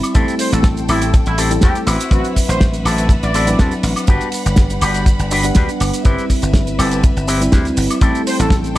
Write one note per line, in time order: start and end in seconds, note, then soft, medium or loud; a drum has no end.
0.00 0.12 G3 medium
0.00 0.12 C4 medium
0.00 0.12 E4 medium
0.00 0.13 E5 medium
0.00 0.13 B5 loud
0.00 closed hi-hat medium
0.00 high woodblock medium
0.04 shaker soft
0.14 0.24 A1 loud
0.14 1.48 G3 medium
0.14 1.48 A3 medium
0.14 0.34 C4 loud
0.14 1.48 C4 medium
0.14 0.34 E4 medium
0.14 1.48 E4 medium
0.14 0.34 G4 medium
0.14 0.34 A4 loud
0.14 1.86 A4 medium
0.14 1.49 A4 medium
0.14 1.86 G5 medium
0.14 kick loud
0.14 closed hi-hat medium
0.14 shaker medium
0.28 closed hi-hat soft
0.28 shaker soft
0.39 0.50 C5 medium
0.39 open hi-hat loud
0.39 shaker medium
0.52 0.83 A1 medium
0.52 0.67 A4 medium
0.52 muted clean electric guitar stroke medium
0.52 closed hi-hat medium
0.52 shaker medium
0.63 muted clean electric guitar stroke soft
0.63 kick loud
0.63 snare loud
0.63 closed hi-hat medium
0.63 shaker medium
0.77 muted clean electric guitar stroke soft
0.77 closed hi-hat soft
0.77 shaker soft
0.89 1.20 A1 medium
0.89 1.13 C4 medium
0.89 1.14 E4 medium
0.89 1.04 E4 loud
0.89 1.14 G4 medium
0.89 1.14 A4 medium
0.89 open hi-hat medium
0.89 high woodblock medium
0.89 shaker medium
1.02 closed hi-hat medium
1.02 shaker soft
1.14 kick loud
1.14 closed hi-hat medium
1.14 shaker medium
1.26 1.57 A1 medium
1.26 1.41 E4 loud
1.26 closed hi-hat soft
1.26 shaker soft
1.38 1.51 C4 loud
1.38 1.51 E4 loud
1.38 1.51 G4 loud
1.38 1.51 A4 loud
1.38 open hi-hat loud
1.38 shaker medium
1.50 1.85 G3 medium
1.50 1.86 A3 medium
1.50 1.86 C4 medium
1.50 1.86 E4 medium
1.50 1.86 A4 loud
1.50 closed hi-hat medium
1.50 shaker medium
1.61 1.72 E2 medium
1.61 1.76 C4 medium
1.61 1.76 E4 medium
1.61 1.76 G4 medium
1.61 1.78 G4 medium
1.61 1.76 A4 medium
1.61 kick loud
1.61 snare loud
1.61 closed hi-hat medium
1.61 shaker medium
1.75 closed hi-hat soft
1.75 shaker soft
1.87 1.96 A1 loud
1.87 2.36 C4 medium
1.87 2.36 E4 medium
1.87 2.36 F#4 medium
1.87 2.36 B4 loud
1.87 4.07 B4 medium
1.87 4.06 E5 medium
1.87 6.01 F#5 medium
1.87 open hi-hat medium
1.87 high woodblock medium
1.87 shaker medium
2.00 closed hi-hat medium
2.00 shaker medium
2.10 2.21 A1 loud
2.10 3.44 F#3 medium
2.10 3.44 C4 medium
2.10 3.45 D4 medium
2.10 3.45 E4 medium
2.10 2.27 F#4 medium
2.10 3.45 B4 loud
2.10 kick loud
2.10 closed hi-hat medium
2.10 shaker medium
2.24 closed hi-hat soft
2.24 shaker soft
2.36 kick medium
2.36 open hi-hat loud
2.36 shaker medium
2.49 2.80 A1 medium
2.49 2.64 C5 medium
2.49 muted clean electric guitar stroke medium
2.49 closed hi-hat medium
2.49 shaker medium
2.61 muted clean electric guitar stroke soft
2.61 kick loud
2.61 snare loud
2.61 closed hi-hat medium
2.61 shaker medium
2.73 muted clean electric guitar stroke soft
2.73 closed hi-hat soft
2.73 shaker soft
2.85 3.17 A1 loud
2.85 3.10 C4 medium
2.85 3.10 E4 medium
2.85 3.10 F#4 medium
2.85 3.10 A4 medium
2.85 open hi-hat loud
2.85 high woodblock medium
2.85 shaker medium
2.98 closed hi-hat medium
2.98 shaker soft
3.09 kick loud
3.09 closed hi-hat medium
3.09 shaker medium
3.23 3.54 A1 medium
3.23 3.59 D5 medium
3.23 closed hi-hat soft
3.23 shaker soft
3.34 3.48 C4 loud
3.34 3.48 E4 loud
3.34 3.48 F#4 loud
3.34 3.48 A4 loud
3.34 open hi-hat loud
3.34 shaker loud
3.46 4.05 F#3 loud
3.46 4.05 C4 medium
3.46 4.05 D4 medium
3.46 4.06 E4 medium
3.46 4.06 B4 loud
3.46 closed hi-hat medium
3.46 shaker medium
3.59 3.68 E2 medium
3.59 3.72 C4 medium
3.59 3.73 E4 medium
3.59 3.73 F#4 medium
3.59 3.73 A4 medium
3.59 kick loud
3.59 snare loud
3.59 closed hi-hat medium
3.59 shaker medium
3.71 closed hi-hat soft
3.71 shaker soft
3.83 3.93 A1 loud
3.83 muted clean electric guitar stroke soft
3.83 open hi-hat loud
3.83 shaker medium
3.96 closed hi-hat medium
3.96 high woodblock medium
3.96 shaker medium
4.07 4.18 G1 loud
4.07 5.41 G3 medium
4.07 6.04 G3 medium
4.07 5.41 B3 medium
4.07 5.41 D4 medium
4.07 4.27 D4 loud
4.07 4.28 F#4 loud
4.07 4.28 G4 loud
4.07 5.42 B4 medium
4.07 4.28 B4 loud
4.07 5.41 F#5 medium
4.07 6.04 B5 medium
4.07 kick loud
4.07 closed hi-hat medium
4.07 shaker medium
4.21 closed hi-hat soft
4.21 shaker soft
4.32 open hi-hat loud
4.32 shaker medium
4.46 4.76 G1 medium
4.46 muted clean electric guitar stroke medium
4.46 closed hi-hat medium
4.46 shaker medium
4.56 muted clean electric guitar stroke soft
4.56 kick loud
4.56 snare loud
4.56 closed hi-hat medium
4.56 shaker medium
4.70 muted clean electric guitar stroke soft
4.70 closed hi-hat medium
4.70 shaker soft
4.81 5.13 G1 medium
4.81 5.07 D4 medium
4.81 5.07 F#4 medium
4.81 5.07 G4 medium
4.81 5.07 B4 loud
4.81 open hi-hat loud
4.81 high woodblock medium
4.81 shaker medium
4.94 closed hi-hat medium
4.94 shaker medium
5.06 kick loud
5.06 closed hi-hat medium
5.06 shaker medium
5.19 5.50 G1 loud
5.19 closed hi-hat soft
5.19 shaker soft
5.31 5.45 D4 loud
5.31 5.45 F#4 medium
5.31 5.45 G4 loud
5.31 5.45 B4 loud
5.31 open hi-hat loud
5.31 shaker medium
5.43 6.02 G3 loud
5.43 6.02 B3 medium
5.43 6.02 D4 medium
5.43 6.03 B4 loud
5.43 6.02 F#5 medium
5.43 closed hi-hat medium
5.43 shaker medium
5.55 5.65 D2 medium
5.55 5.69 D4 medium
5.55 5.69 F#4 medium
5.55 5.69 G4 medium
5.55 5.69 B4 medium
5.55 kick loud
5.55 snare loud
5.55 closed hi-hat medium
5.55 shaker medium
5.69 closed hi-hat soft
5.69 shaker soft
5.80 5.90 G1 loud
5.80 muted clean electric guitar stroke soft
5.80 open hi-hat medium
5.80 high woodblock medium
5.80 shaker medium
5.93 closed hi-hat medium
5.93 shaker soft
6.04 6.14 G1 loud
6.04 7.37 G3 medium
6.04 7.38 C4 medium
6.04 6.24 C4 loud
6.04 7.38 E4 medium
6.04 6.24 E4 medium
6.04 6.24 G4 loud
6.04 8.00 B4 medium
6.04 6.24 B4 loud
6.04 7.38 B4 medium
6.04 8.00 E5 medium
6.04 kick loud
6.04 closed hi-hat medium
6.04 shaker medium
6.18 closed hi-hat soft
6.18 shaker soft
6.30 kick medium
6.30 open hi-hat loud
6.30 shaker medium
6.42 6.73 G1 medium
6.42 muted clean electric guitar stroke medium
6.42 closed hi-hat medium
6.42 shaker medium
6.54 muted clean electric guitar stroke soft
6.54 kick loud
6.54 snare loud
6.54 closed hi-hat medium
6.54 shaker medium
6.67 muted clean electric guitar stroke soft
6.67 closed hi-hat medium
6.67 shaker soft
6.78 7.10 G1 medium
6.78 7.03 C4 medium
6.78 7.04 E4 medium
6.78 7.04 G4 medium
6.78 7.04 A4 medium
6.78 open hi-hat loud
6.78 high woodblock medium
6.78 shaker medium
6.91 closed hi-hat medium
6.91 shaker medium
7.03 kick loud
7.03 closed hi-hat medium
7.03 shaker medium
7.17 7.47 G1 loud
7.17 closed hi-hat soft
7.17 shaker soft
7.28 7.41 C4 loud
7.28 7.41 E4 medium
7.28 7.41 G4 loud
7.28 7.41 B4 loud
7.28 open hi-hat loud
7.28 shaker loud
7.40 7.99 G3 loud
7.40 7.99 C4 medium
7.40 8.00 E4 medium
7.40 8.00 B4 loud
7.40 closed hi-hat medium
7.40 shaker medium
7.52 7.70 D2 medium
7.52 7.66 C4 medium
7.52 7.66 E4 medium
7.52 7.66 G4 medium
7.52 7.66 B4 medium
7.52 kick loud
7.52 snare loud
7.52 closed hi-hat medium
7.52 shaker medium
7.65 closed hi-hat soft
7.65 shaker soft
7.77 7.86 G1 medium
7.77 muted clean electric guitar stroke soft
7.77 open hi-hat loud
7.77 shaker medium
7.90 closed hi-hat medium
7.90 high woodblock medium
7.90 shaker medium
8.01 8.11 A1 loud
8.01 8.78 G3 medium
8.01 8.78 A3 medium
8.01 8.21 C4 loud
8.01 8.78 C4 medium
8.01 8.21 E4 medium
8.01 8.78 E4 medium
8.01 8.21 G4 loud
8.01 8.21 A4 loud
8.01 8.78 A4 medium
8.01 8.78 G5 medium
8.01 kick loud
8.01 closed hi-hat medium
8.01 shaker medium
8.15 closed hi-hat soft
8.15 shaker soft
8.27 8.37 C5 medium
8.27 open hi-hat loud
8.27 shaker medium
8.39 8.70 A1 medium
8.39 8.54 A4 medium
8.39 muted clean electric guitar stroke medium
8.39 closed hi-hat medium
8.39 shaker medium
8.50 muted clean electric guitar stroke soft
8.50 kick loud
8.50 snare loud
8.50 closed hi-hat medium
8.50 shaker medium
8.64 muted clean electric guitar stroke soft
8.64 closed hi-hat soft
8.64 shaker soft